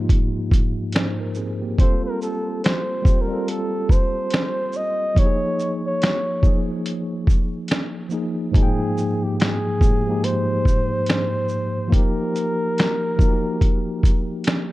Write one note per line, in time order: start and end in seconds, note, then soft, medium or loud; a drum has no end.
0.00 1.80 G#2 medium
0.00 1.80 F3 medium
0.00 1.62 A#3 medium
0.00 0.95 D#4 medium
0.00 0.95 F4 medium
0.00 1.62 G4 loud
0.09 kick loud
0.09 closed hi-hat medium
0.51 kick medium
0.51 closed hi-hat medium
0.51 shaker medium
0.92 1.19 D#4 medium
0.92 1.19 C5 medium
0.92 finger snap medium
0.92 snare loud
0.92 closed hi-hat medium
1.20 1.36 A#4 medium
1.35 1.61 C4 soft
1.35 1.61 G#4 medium
1.35 shaker soft
1.62 2.02 A#3 medium
1.62 2.02 G4 medium
1.78 2.81 G3 medium
1.78 2.81 C4 medium
1.78 2.82 F4 medium
1.78 2.03 C5 medium
1.78 kick loud
1.78 closed hi-hat medium
1.83 2.83 A4 loud
2.05 2.20 A#4 medium
2.22 2.61 A4 medium
2.22 shaker medium
2.64 3.23 C5 medium
2.64 finger snap medium
2.64 snare loud
2.64 closed hi-hat medium
3.02 3.24 G3 medium
3.02 3.25 C4 medium
3.02 3.25 F4 medium
3.02 kick loud
3.02 shaker medium
3.07 3.26 G4 medium
3.21 3.50 A#4 medium
3.28 4.60 G3 medium
3.28 4.61 C4 medium
3.28 4.62 F4 medium
3.33 4.63 A4 medium
3.48 3.93 A4 medium
3.48 closed hi-hat medium
3.89 4.78 C5 loud
3.89 kick medium
3.89 shaker soft
4.30 finger snap medium
4.30 snare loud
4.30 closed hi-hat medium
4.73 5.20 D#5 loud
4.73 shaker soft
5.15 6.18 F3 medium
5.15 6.19 A#3 medium
5.15 6.20 D#4 medium
5.15 5.74 C#5 loud
5.15 kick loud
5.15 closed hi-hat medium
5.19 5.26 G4 medium
5.26 6.24 G#4 loud
5.60 shaker medium
5.86 6.66 C#5 medium
6.02 finger snap medium
6.02 snare loud
6.02 closed hi-hat medium
6.42 7.76 F3 medium
6.42 7.77 A#3 medium
6.42 7.78 D#4 medium
6.42 kick medium
6.42 shaker medium
6.47 7.78 G#4 medium
6.86 closed hi-hat medium
7.27 kick medium
7.27 shaker soft
7.68 finger snap medium
7.68 snare loud
7.68 closed hi-hat medium
8.09 8.46 F3 medium
8.09 8.47 A#3 medium
8.09 8.47 D#4 medium
8.09 shaker soft
8.14 8.48 G#4 medium
8.51 9.55 G#2 loud
8.51 9.56 F3 loud
8.51 9.57 A#3 medium
8.51 9.57 D#4 medium
8.51 9.25 G#4 loud
8.51 kick loud
8.51 closed hi-hat medium
8.56 8.63 F#4 medium
8.63 9.61 G5 loud
8.98 shaker medium
9.23 9.38 G4 medium
9.39 10.26 G#4 medium
9.39 finger snap medium
9.39 snare loud
9.39 closed hi-hat medium
9.79 10.01 G#2 medium
9.79 10.01 F3 medium
9.79 10.02 A#3 medium
9.79 10.02 D#4 medium
9.79 kick medium
9.79 shaker medium
9.84 10.03 G4 medium
10.07 11.38 G#2 medium
10.07 11.38 F3 medium
10.07 11.39 A#3 medium
10.07 11.40 D#4 medium
10.11 11.40 G4 medium
10.24 11.93 C5 loud
10.24 closed hi-hat medium
10.65 kick medium
10.65 shaker medium
11.06 finger snap loud
11.06 snare loud
11.06 closed hi-hat medium
11.49 shaker soft
11.88 12.93 F3 medium
11.88 12.93 A#3 medium
11.88 12.94 D#4 medium
11.92 12.95 G4 loud
11.92 14.43 A#4 loud
11.92 kick loud
11.92 closed hi-hat medium
12.36 closed hi-hat soft
12.36 shaker medium
12.78 finger snap medium
12.78 snare medium
12.78 closed hi-hat medium
13.16 14.51 F3 medium
13.16 14.52 A#3 medium
13.16 14.53 D#4 medium
13.16 kick loud
13.16 shaker soft
13.21 13.28 F#4 medium
13.28 14.57 G4 medium
13.61 kick medium
13.61 closed hi-hat medium
14.03 kick medium
14.03 closed hi-hat medium
14.03 shaker medium
14.44 finger snap medium
14.44 snare loud
14.44 closed hi-hat medium